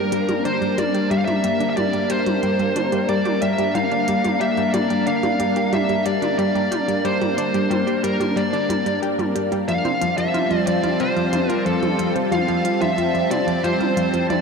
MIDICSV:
0, 0, Header, 1, 5, 480
1, 0, Start_track
1, 0, Tempo, 659341
1, 1290, Time_signature, 4, 2, 24, 8
1, 10493, End_track
2, 0, Start_track
2, 0, Title_t, "Lead electric guitar"
2, 0, Program_c, 0, 29
2, 0, Note_on_c, 0, 70, 87
2, 327, Note_off_c, 0, 70, 0
2, 330, Note_on_c, 0, 72, 98
2, 571, Note_on_c, 0, 74, 90
2, 577, Note_off_c, 0, 72, 0
2, 809, Note_off_c, 0, 74, 0
2, 812, Note_on_c, 0, 76, 96
2, 857, Note_off_c, 0, 76, 0
2, 860, Note_on_c, 0, 77, 81
2, 908, Note_off_c, 0, 77, 0
2, 911, Note_on_c, 0, 76, 102
2, 1226, Note_off_c, 0, 76, 0
2, 1235, Note_on_c, 0, 76, 72
2, 1286, Note_off_c, 0, 76, 0
2, 1289, Note_on_c, 0, 74, 105
2, 1529, Note_on_c, 0, 72, 90
2, 1537, Note_off_c, 0, 74, 0
2, 2248, Note_on_c, 0, 74, 96
2, 2271, Note_off_c, 0, 72, 0
2, 2489, Note_off_c, 0, 74, 0
2, 2492, Note_on_c, 0, 76, 99
2, 2728, Note_off_c, 0, 76, 0
2, 2731, Note_on_c, 0, 77, 99
2, 3207, Note_off_c, 0, 77, 0
2, 3210, Note_on_c, 0, 76, 114
2, 3447, Note_off_c, 0, 76, 0
2, 3450, Note_on_c, 0, 74, 92
2, 3689, Note_off_c, 0, 74, 0
2, 3692, Note_on_c, 0, 77, 97
2, 4173, Note_off_c, 0, 77, 0
2, 4176, Note_on_c, 0, 76, 100
2, 4396, Note_off_c, 0, 76, 0
2, 4413, Note_on_c, 0, 74, 87
2, 4641, Note_off_c, 0, 74, 0
2, 4650, Note_on_c, 0, 74, 94
2, 5132, Note_on_c, 0, 72, 102
2, 5144, Note_off_c, 0, 74, 0
2, 5849, Note_off_c, 0, 72, 0
2, 5852, Note_on_c, 0, 70, 79
2, 6092, Note_on_c, 0, 74, 85
2, 6098, Note_off_c, 0, 70, 0
2, 6542, Note_off_c, 0, 74, 0
2, 7051, Note_on_c, 0, 77, 118
2, 7385, Note_off_c, 0, 77, 0
2, 7409, Note_on_c, 0, 76, 105
2, 7766, Note_off_c, 0, 76, 0
2, 7769, Note_on_c, 0, 74, 99
2, 8009, Note_on_c, 0, 72, 102
2, 8017, Note_off_c, 0, 74, 0
2, 8381, Note_off_c, 0, 72, 0
2, 8381, Note_on_c, 0, 70, 102
2, 8489, Note_off_c, 0, 70, 0
2, 8492, Note_on_c, 0, 69, 97
2, 8826, Note_off_c, 0, 69, 0
2, 8970, Note_on_c, 0, 77, 118
2, 9328, Note_off_c, 0, 77, 0
2, 9331, Note_on_c, 0, 76, 102
2, 9689, Note_off_c, 0, 76, 0
2, 9691, Note_on_c, 0, 74, 95
2, 9931, Note_on_c, 0, 72, 101
2, 9938, Note_off_c, 0, 74, 0
2, 10381, Note_off_c, 0, 72, 0
2, 10410, Note_on_c, 0, 74, 100
2, 10493, Note_off_c, 0, 74, 0
2, 10493, End_track
3, 0, Start_track
3, 0, Title_t, "Analog synth pad"
3, 0, Program_c, 1, 89
3, 0, Note_on_c, 1, 55, 84
3, 0, Note_on_c, 1, 58, 71
3, 0, Note_on_c, 1, 62, 74
3, 0, Note_on_c, 1, 70, 90
3, 7020, Note_off_c, 1, 55, 0
3, 7021, Note_off_c, 1, 62, 0
3, 7022, Note_off_c, 1, 58, 0
3, 7022, Note_off_c, 1, 70, 0
3, 7049, Note_on_c, 1, 55, 82
3, 7050, Note_on_c, 1, 81, 89
3, 7051, Note_on_c, 1, 60, 76
3, 7051, Note_on_c, 1, 65, 76
3, 9902, Note_off_c, 1, 65, 0
3, 9934, Note_on_c, 1, 64, 76
3, 10493, Note_off_c, 1, 55, 0
3, 10493, Note_off_c, 1, 60, 0
3, 10493, Note_off_c, 1, 64, 0
3, 10493, Note_off_c, 1, 81, 0
3, 10493, End_track
4, 0, Start_track
4, 0, Title_t, "Synth arpeggio sound"
4, 0, Program_c, 2, 84
4, 0, Note_on_c, 2, 55, 73
4, 80, Note_off_c, 2, 55, 0
4, 88, Note_on_c, 2, 55, 78
4, 201, Note_off_c, 2, 55, 0
4, 210, Note_on_c, 2, 55, 74
4, 263, Note_off_c, 2, 55, 0
4, 329, Note_on_c, 2, 62, 83
4, 418, Note_off_c, 2, 62, 0
4, 448, Note_on_c, 2, 55, 74
4, 502, Note_off_c, 2, 55, 0
4, 568, Note_on_c, 2, 55, 74
4, 658, Note_off_c, 2, 55, 0
4, 688, Note_on_c, 2, 67, 77
4, 777, Note_off_c, 2, 67, 0
4, 808, Note_on_c, 2, 55, 82
4, 920, Note_off_c, 2, 55, 0
4, 929, Note_on_c, 2, 55, 77
4, 1040, Note_off_c, 2, 55, 0
4, 1049, Note_on_c, 2, 55, 74
4, 1102, Note_off_c, 2, 55, 0
4, 1168, Note_on_c, 2, 62, 72
4, 1257, Note_off_c, 2, 62, 0
4, 1289, Note_on_c, 2, 55, 89
4, 1343, Note_off_c, 2, 55, 0
4, 1409, Note_on_c, 2, 55, 76
4, 1498, Note_off_c, 2, 55, 0
4, 1528, Note_on_c, 2, 67, 81
4, 1617, Note_off_c, 2, 67, 0
4, 1649, Note_on_c, 2, 55, 78
4, 1760, Note_off_c, 2, 55, 0
4, 1769, Note_on_c, 2, 55, 84
4, 1879, Note_off_c, 2, 55, 0
4, 1888, Note_on_c, 2, 55, 75
4, 1942, Note_off_c, 2, 55, 0
4, 2009, Note_on_c, 2, 62, 76
4, 2098, Note_off_c, 2, 62, 0
4, 2128, Note_on_c, 2, 55, 77
4, 2182, Note_off_c, 2, 55, 0
4, 2249, Note_on_c, 2, 55, 85
4, 2338, Note_off_c, 2, 55, 0
4, 2369, Note_on_c, 2, 67, 77
4, 2458, Note_off_c, 2, 67, 0
4, 2489, Note_on_c, 2, 55, 79
4, 2601, Note_off_c, 2, 55, 0
4, 2609, Note_on_c, 2, 55, 74
4, 2721, Note_off_c, 2, 55, 0
4, 2730, Note_on_c, 2, 55, 80
4, 2783, Note_off_c, 2, 55, 0
4, 2851, Note_on_c, 2, 62, 79
4, 2939, Note_off_c, 2, 62, 0
4, 2972, Note_on_c, 2, 55, 76
4, 3024, Note_off_c, 2, 55, 0
4, 3092, Note_on_c, 2, 55, 74
4, 3179, Note_off_c, 2, 55, 0
4, 3212, Note_on_c, 2, 67, 85
4, 3300, Note_off_c, 2, 67, 0
4, 3332, Note_on_c, 2, 55, 78
4, 3445, Note_off_c, 2, 55, 0
4, 3452, Note_on_c, 2, 55, 81
4, 3561, Note_off_c, 2, 55, 0
4, 3570, Note_on_c, 2, 55, 72
4, 3623, Note_off_c, 2, 55, 0
4, 3690, Note_on_c, 2, 62, 86
4, 3779, Note_off_c, 2, 62, 0
4, 3810, Note_on_c, 2, 55, 74
4, 3863, Note_off_c, 2, 55, 0
4, 3931, Note_on_c, 2, 55, 76
4, 4019, Note_off_c, 2, 55, 0
4, 4052, Note_on_c, 2, 67, 73
4, 4139, Note_off_c, 2, 67, 0
4, 4171, Note_on_c, 2, 55, 82
4, 4282, Note_off_c, 2, 55, 0
4, 4291, Note_on_c, 2, 55, 77
4, 4401, Note_off_c, 2, 55, 0
4, 4409, Note_on_c, 2, 55, 77
4, 4463, Note_off_c, 2, 55, 0
4, 4529, Note_on_c, 2, 62, 77
4, 4618, Note_off_c, 2, 62, 0
4, 4649, Note_on_c, 2, 55, 84
4, 4703, Note_off_c, 2, 55, 0
4, 4769, Note_on_c, 2, 55, 76
4, 4858, Note_off_c, 2, 55, 0
4, 4888, Note_on_c, 2, 67, 77
4, 4977, Note_off_c, 2, 67, 0
4, 5009, Note_on_c, 2, 55, 70
4, 5122, Note_off_c, 2, 55, 0
4, 5130, Note_on_c, 2, 55, 81
4, 5242, Note_off_c, 2, 55, 0
4, 5251, Note_on_c, 2, 55, 74
4, 5304, Note_off_c, 2, 55, 0
4, 5371, Note_on_c, 2, 62, 77
4, 5459, Note_off_c, 2, 62, 0
4, 5492, Note_on_c, 2, 55, 78
4, 5544, Note_off_c, 2, 55, 0
4, 5608, Note_on_c, 2, 55, 82
4, 5698, Note_off_c, 2, 55, 0
4, 5729, Note_on_c, 2, 67, 74
4, 5818, Note_off_c, 2, 67, 0
4, 5849, Note_on_c, 2, 55, 81
4, 5961, Note_off_c, 2, 55, 0
4, 5970, Note_on_c, 2, 55, 75
4, 6078, Note_off_c, 2, 55, 0
4, 6087, Note_on_c, 2, 55, 82
4, 6142, Note_off_c, 2, 55, 0
4, 6209, Note_on_c, 2, 62, 75
4, 6298, Note_off_c, 2, 62, 0
4, 6328, Note_on_c, 2, 55, 74
4, 6382, Note_off_c, 2, 55, 0
4, 6449, Note_on_c, 2, 55, 80
4, 6538, Note_off_c, 2, 55, 0
4, 6569, Note_on_c, 2, 67, 82
4, 6658, Note_off_c, 2, 67, 0
4, 6687, Note_on_c, 2, 55, 77
4, 6800, Note_off_c, 2, 55, 0
4, 6809, Note_on_c, 2, 55, 73
4, 6921, Note_off_c, 2, 55, 0
4, 6929, Note_on_c, 2, 55, 76
4, 6983, Note_off_c, 2, 55, 0
4, 7050, Note_on_c, 2, 53, 81
4, 7103, Note_off_c, 2, 53, 0
4, 7169, Note_on_c, 2, 60, 80
4, 7258, Note_off_c, 2, 60, 0
4, 7289, Note_on_c, 2, 53, 81
4, 7343, Note_off_c, 2, 53, 0
4, 7409, Note_on_c, 2, 53, 75
4, 7498, Note_off_c, 2, 53, 0
4, 7528, Note_on_c, 2, 65, 79
4, 7617, Note_off_c, 2, 65, 0
4, 7648, Note_on_c, 2, 53, 77
4, 7760, Note_off_c, 2, 53, 0
4, 7768, Note_on_c, 2, 53, 80
4, 7879, Note_off_c, 2, 53, 0
4, 7888, Note_on_c, 2, 53, 71
4, 7942, Note_off_c, 2, 53, 0
4, 8009, Note_on_c, 2, 60, 85
4, 8098, Note_off_c, 2, 60, 0
4, 8128, Note_on_c, 2, 53, 77
4, 8182, Note_off_c, 2, 53, 0
4, 8247, Note_on_c, 2, 53, 75
4, 8337, Note_off_c, 2, 53, 0
4, 8367, Note_on_c, 2, 65, 77
4, 8457, Note_off_c, 2, 65, 0
4, 8488, Note_on_c, 2, 53, 78
4, 8599, Note_off_c, 2, 53, 0
4, 8608, Note_on_c, 2, 53, 75
4, 8717, Note_off_c, 2, 53, 0
4, 8726, Note_on_c, 2, 53, 77
4, 8781, Note_off_c, 2, 53, 0
4, 8849, Note_on_c, 2, 60, 72
4, 8938, Note_off_c, 2, 60, 0
4, 8967, Note_on_c, 2, 53, 90
4, 9021, Note_off_c, 2, 53, 0
4, 9087, Note_on_c, 2, 53, 83
4, 9177, Note_off_c, 2, 53, 0
4, 9207, Note_on_c, 2, 65, 80
4, 9297, Note_off_c, 2, 65, 0
4, 9328, Note_on_c, 2, 53, 79
4, 9440, Note_off_c, 2, 53, 0
4, 9448, Note_on_c, 2, 53, 83
4, 9559, Note_off_c, 2, 53, 0
4, 9567, Note_on_c, 2, 53, 73
4, 9622, Note_off_c, 2, 53, 0
4, 9687, Note_on_c, 2, 60, 81
4, 9777, Note_off_c, 2, 60, 0
4, 9807, Note_on_c, 2, 53, 77
4, 9862, Note_off_c, 2, 53, 0
4, 9928, Note_on_c, 2, 53, 87
4, 10017, Note_off_c, 2, 53, 0
4, 10048, Note_on_c, 2, 65, 76
4, 10137, Note_off_c, 2, 65, 0
4, 10168, Note_on_c, 2, 53, 76
4, 10281, Note_off_c, 2, 53, 0
4, 10289, Note_on_c, 2, 53, 79
4, 10400, Note_off_c, 2, 53, 0
4, 10409, Note_on_c, 2, 53, 81
4, 10463, Note_off_c, 2, 53, 0
4, 10493, End_track
5, 0, Start_track
5, 0, Title_t, "Drums"
5, 89, Note_on_c, 9, 42, 88
5, 162, Note_off_c, 9, 42, 0
5, 209, Note_on_c, 9, 42, 49
5, 209, Note_on_c, 9, 48, 43
5, 282, Note_off_c, 9, 42, 0
5, 282, Note_off_c, 9, 48, 0
5, 329, Note_on_c, 9, 42, 53
5, 402, Note_off_c, 9, 42, 0
5, 451, Note_on_c, 9, 42, 24
5, 524, Note_off_c, 9, 42, 0
5, 569, Note_on_c, 9, 42, 87
5, 569, Note_on_c, 9, 48, 47
5, 642, Note_off_c, 9, 42, 0
5, 642, Note_off_c, 9, 48, 0
5, 689, Note_on_c, 9, 42, 51
5, 761, Note_off_c, 9, 42, 0
5, 809, Note_on_c, 9, 42, 50
5, 882, Note_off_c, 9, 42, 0
5, 929, Note_on_c, 9, 42, 25
5, 929, Note_on_c, 9, 48, 44
5, 1002, Note_off_c, 9, 42, 0
5, 1002, Note_off_c, 9, 48, 0
5, 1048, Note_on_c, 9, 42, 90
5, 1121, Note_off_c, 9, 42, 0
5, 1169, Note_on_c, 9, 42, 50
5, 1241, Note_off_c, 9, 42, 0
5, 1289, Note_on_c, 9, 42, 54
5, 1289, Note_on_c, 9, 48, 44
5, 1361, Note_off_c, 9, 42, 0
5, 1361, Note_off_c, 9, 48, 0
5, 1408, Note_on_c, 9, 42, 28
5, 1481, Note_off_c, 9, 42, 0
5, 1527, Note_on_c, 9, 42, 98
5, 1600, Note_off_c, 9, 42, 0
5, 1648, Note_on_c, 9, 42, 51
5, 1648, Note_on_c, 9, 48, 46
5, 1721, Note_off_c, 9, 42, 0
5, 1721, Note_off_c, 9, 48, 0
5, 1769, Note_on_c, 9, 42, 55
5, 1841, Note_off_c, 9, 42, 0
5, 1889, Note_on_c, 9, 42, 28
5, 1962, Note_off_c, 9, 42, 0
5, 2009, Note_on_c, 9, 42, 92
5, 2009, Note_on_c, 9, 48, 46
5, 2082, Note_off_c, 9, 42, 0
5, 2082, Note_off_c, 9, 48, 0
5, 2129, Note_on_c, 9, 42, 51
5, 2201, Note_off_c, 9, 42, 0
5, 2248, Note_on_c, 9, 42, 54
5, 2321, Note_off_c, 9, 42, 0
5, 2369, Note_on_c, 9, 42, 27
5, 2369, Note_on_c, 9, 48, 45
5, 2442, Note_off_c, 9, 42, 0
5, 2442, Note_off_c, 9, 48, 0
5, 2489, Note_on_c, 9, 42, 91
5, 2562, Note_off_c, 9, 42, 0
5, 2610, Note_on_c, 9, 42, 55
5, 2683, Note_off_c, 9, 42, 0
5, 2730, Note_on_c, 9, 42, 53
5, 2730, Note_on_c, 9, 48, 42
5, 2803, Note_off_c, 9, 42, 0
5, 2803, Note_off_c, 9, 48, 0
5, 2850, Note_on_c, 9, 42, 26
5, 2923, Note_off_c, 9, 42, 0
5, 2969, Note_on_c, 9, 42, 93
5, 3042, Note_off_c, 9, 42, 0
5, 3091, Note_on_c, 9, 42, 55
5, 3091, Note_on_c, 9, 48, 43
5, 3164, Note_off_c, 9, 42, 0
5, 3164, Note_off_c, 9, 48, 0
5, 3210, Note_on_c, 9, 42, 52
5, 3282, Note_off_c, 9, 42, 0
5, 3330, Note_on_c, 9, 42, 27
5, 3402, Note_off_c, 9, 42, 0
5, 3450, Note_on_c, 9, 42, 99
5, 3450, Note_on_c, 9, 48, 45
5, 3522, Note_off_c, 9, 42, 0
5, 3522, Note_off_c, 9, 48, 0
5, 3570, Note_on_c, 9, 42, 54
5, 3643, Note_off_c, 9, 42, 0
5, 3689, Note_on_c, 9, 42, 54
5, 3762, Note_off_c, 9, 42, 0
5, 3809, Note_on_c, 9, 42, 28
5, 3809, Note_on_c, 9, 48, 46
5, 3882, Note_off_c, 9, 42, 0
5, 3882, Note_off_c, 9, 48, 0
5, 3929, Note_on_c, 9, 42, 89
5, 4002, Note_off_c, 9, 42, 0
5, 4049, Note_on_c, 9, 42, 52
5, 4121, Note_off_c, 9, 42, 0
5, 4170, Note_on_c, 9, 42, 54
5, 4170, Note_on_c, 9, 48, 45
5, 4242, Note_off_c, 9, 42, 0
5, 4242, Note_off_c, 9, 48, 0
5, 4290, Note_on_c, 9, 42, 26
5, 4363, Note_off_c, 9, 42, 0
5, 4410, Note_on_c, 9, 42, 95
5, 4482, Note_off_c, 9, 42, 0
5, 4531, Note_on_c, 9, 42, 56
5, 4531, Note_on_c, 9, 48, 45
5, 4604, Note_off_c, 9, 42, 0
5, 4604, Note_off_c, 9, 48, 0
5, 4651, Note_on_c, 9, 42, 50
5, 4724, Note_off_c, 9, 42, 0
5, 4772, Note_on_c, 9, 42, 28
5, 4845, Note_off_c, 9, 42, 0
5, 4892, Note_on_c, 9, 42, 97
5, 4892, Note_on_c, 9, 48, 45
5, 4964, Note_off_c, 9, 42, 0
5, 4964, Note_off_c, 9, 48, 0
5, 5013, Note_on_c, 9, 42, 53
5, 5086, Note_off_c, 9, 42, 0
5, 5133, Note_on_c, 9, 42, 54
5, 5205, Note_off_c, 9, 42, 0
5, 5253, Note_on_c, 9, 42, 26
5, 5253, Note_on_c, 9, 48, 44
5, 5326, Note_off_c, 9, 42, 0
5, 5326, Note_off_c, 9, 48, 0
5, 5373, Note_on_c, 9, 42, 95
5, 5446, Note_off_c, 9, 42, 0
5, 5493, Note_on_c, 9, 42, 53
5, 5565, Note_off_c, 9, 42, 0
5, 5614, Note_on_c, 9, 42, 54
5, 5614, Note_on_c, 9, 48, 45
5, 5687, Note_off_c, 9, 42, 0
5, 5687, Note_off_c, 9, 48, 0
5, 5734, Note_on_c, 9, 42, 29
5, 5807, Note_off_c, 9, 42, 0
5, 5853, Note_on_c, 9, 42, 95
5, 5926, Note_off_c, 9, 42, 0
5, 5974, Note_on_c, 9, 42, 49
5, 5974, Note_on_c, 9, 48, 43
5, 6047, Note_off_c, 9, 42, 0
5, 6047, Note_off_c, 9, 48, 0
5, 6094, Note_on_c, 9, 42, 52
5, 6167, Note_off_c, 9, 42, 0
5, 6214, Note_on_c, 9, 42, 27
5, 6287, Note_off_c, 9, 42, 0
5, 6334, Note_on_c, 9, 42, 92
5, 6334, Note_on_c, 9, 48, 42
5, 6407, Note_off_c, 9, 42, 0
5, 6407, Note_off_c, 9, 48, 0
5, 6452, Note_on_c, 9, 42, 56
5, 6525, Note_off_c, 9, 42, 0
5, 6573, Note_on_c, 9, 42, 54
5, 6646, Note_off_c, 9, 42, 0
5, 6693, Note_on_c, 9, 42, 26
5, 6693, Note_on_c, 9, 48, 45
5, 6766, Note_off_c, 9, 42, 0
5, 6766, Note_off_c, 9, 48, 0
5, 6812, Note_on_c, 9, 42, 96
5, 6885, Note_off_c, 9, 42, 0
5, 6931, Note_on_c, 9, 42, 50
5, 7003, Note_off_c, 9, 42, 0
5, 7051, Note_on_c, 9, 42, 52
5, 7124, Note_off_c, 9, 42, 0
5, 7171, Note_on_c, 9, 42, 26
5, 7171, Note_on_c, 9, 48, 42
5, 7244, Note_off_c, 9, 42, 0
5, 7244, Note_off_c, 9, 48, 0
5, 7291, Note_on_c, 9, 42, 92
5, 7364, Note_off_c, 9, 42, 0
5, 7410, Note_on_c, 9, 42, 50
5, 7483, Note_off_c, 9, 42, 0
5, 7531, Note_on_c, 9, 42, 50
5, 7531, Note_on_c, 9, 48, 41
5, 7604, Note_off_c, 9, 42, 0
5, 7604, Note_off_c, 9, 48, 0
5, 7649, Note_on_c, 9, 42, 27
5, 7722, Note_off_c, 9, 42, 0
5, 7769, Note_on_c, 9, 42, 93
5, 7841, Note_off_c, 9, 42, 0
5, 7889, Note_on_c, 9, 42, 53
5, 7889, Note_on_c, 9, 48, 40
5, 7961, Note_off_c, 9, 42, 0
5, 7961, Note_off_c, 9, 48, 0
5, 8008, Note_on_c, 9, 42, 52
5, 8081, Note_off_c, 9, 42, 0
5, 8129, Note_on_c, 9, 42, 25
5, 8202, Note_off_c, 9, 42, 0
5, 8248, Note_on_c, 9, 42, 90
5, 8248, Note_on_c, 9, 48, 41
5, 8321, Note_off_c, 9, 42, 0
5, 8321, Note_off_c, 9, 48, 0
5, 8370, Note_on_c, 9, 42, 54
5, 8443, Note_off_c, 9, 42, 0
5, 8489, Note_on_c, 9, 42, 50
5, 8562, Note_off_c, 9, 42, 0
5, 8610, Note_on_c, 9, 42, 27
5, 8610, Note_on_c, 9, 48, 43
5, 8683, Note_off_c, 9, 42, 0
5, 8683, Note_off_c, 9, 48, 0
5, 8730, Note_on_c, 9, 42, 92
5, 8803, Note_off_c, 9, 42, 0
5, 8851, Note_on_c, 9, 42, 52
5, 8924, Note_off_c, 9, 42, 0
5, 8970, Note_on_c, 9, 42, 50
5, 8970, Note_on_c, 9, 48, 43
5, 9043, Note_off_c, 9, 42, 0
5, 9043, Note_off_c, 9, 48, 0
5, 9088, Note_on_c, 9, 42, 26
5, 9161, Note_off_c, 9, 42, 0
5, 9209, Note_on_c, 9, 42, 92
5, 9282, Note_off_c, 9, 42, 0
5, 9330, Note_on_c, 9, 42, 50
5, 9330, Note_on_c, 9, 48, 41
5, 9403, Note_off_c, 9, 42, 0
5, 9403, Note_off_c, 9, 48, 0
5, 9450, Note_on_c, 9, 42, 51
5, 9523, Note_off_c, 9, 42, 0
5, 9572, Note_on_c, 9, 42, 25
5, 9645, Note_off_c, 9, 42, 0
5, 9692, Note_on_c, 9, 42, 87
5, 9692, Note_on_c, 9, 48, 42
5, 9765, Note_off_c, 9, 42, 0
5, 9765, Note_off_c, 9, 48, 0
5, 9813, Note_on_c, 9, 42, 48
5, 9885, Note_off_c, 9, 42, 0
5, 9933, Note_on_c, 9, 42, 49
5, 10005, Note_off_c, 9, 42, 0
5, 10051, Note_on_c, 9, 42, 24
5, 10051, Note_on_c, 9, 48, 42
5, 10124, Note_off_c, 9, 42, 0
5, 10124, Note_off_c, 9, 48, 0
5, 10171, Note_on_c, 9, 42, 88
5, 10244, Note_off_c, 9, 42, 0
5, 10292, Note_on_c, 9, 42, 49
5, 10365, Note_off_c, 9, 42, 0
5, 10412, Note_on_c, 9, 42, 48
5, 10412, Note_on_c, 9, 48, 41
5, 10485, Note_off_c, 9, 42, 0
5, 10485, Note_off_c, 9, 48, 0
5, 10493, End_track
0, 0, End_of_file